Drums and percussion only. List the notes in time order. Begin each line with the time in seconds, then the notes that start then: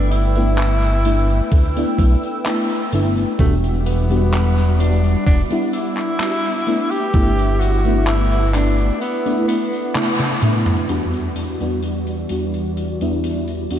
0.11 closed hi-hat
0.36 closed hi-hat
0.58 clap, closed hi-hat
0.82 closed hi-hat
1.05 closed hi-hat
1.30 closed hi-hat
1.52 kick, closed hi-hat
1.77 closed hi-hat
1.99 kick, closed hi-hat
2.24 closed hi-hat
2.46 clap, closed hi-hat
2.70 closed hi-hat
2.93 closed hi-hat
3.17 closed hi-hat
3.39 kick, closed hi-hat
3.64 closed hi-hat
3.86 closed hi-hat
4.11 closed hi-hat
4.33 clap, closed hi-hat
4.58 closed hi-hat
4.80 closed hi-hat
5.04 closed hi-hat
5.27 kick, closed hi-hat
5.51 closed hi-hat
5.73 closed hi-hat
5.97 clap, closed hi-hat
6.20 clap, closed hi-hat
6.45 closed hi-hat
6.67 closed hi-hat
6.92 closed hi-hat
7.13 kick, closed hi-hat
7.39 closed hi-hat
7.61 closed hi-hat
7.85 closed hi-hat
8.07 clap, closed hi-hat
8.32 closed hi-hat
8.55 clap, closed hi-hat
8.79 closed hi-hat
9.02 closed hi-hat
9.26 closed hi-hat
9.49 closed hi-hat
9.73 closed hi-hat
9.95 clap, closed hi-hat, high tom
10.20 closed hi-hat, high tom
10.42 closed hi-hat, mid tom
10.66 closed hi-hat, mid tom
10.89 closed hi-hat
11.14 closed hi-hat
11.36 closed hi-hat
11.61 closed hi-hat
11.83 closed hi-hat
12.07 closed hi-hat
12.29 closed hi-hat
12.54 closed hi-hat
12.77 closed hi-hat
13.01 closed hi-hat
13.24 closed hi-hat
13.48 closed hi-hat
13.71 closed hi-hat